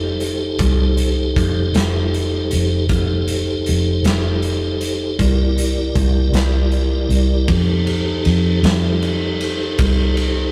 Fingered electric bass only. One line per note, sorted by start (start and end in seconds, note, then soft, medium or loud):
0.00 0.56 F1 loud
0.59 1.32 C2 medium
1.37 1.72 F1 medium
1.75 2.48 F1 medium
2.53 2.88 F1 medium
2.89 3.63 F1 medium
3.69 4.03 F1 medium
4.05 5.16 F1 medium
5.19 5.92 C2 medium
5.96 6.32 C2 medium
6.32 7.07 C2 medium
7.09 7.46 C2 medium
7.48 8.22 F2 medium
8.26 8.62 F2 medium
8.63 9.75 F2 loud
9.79 10.52 C2 medium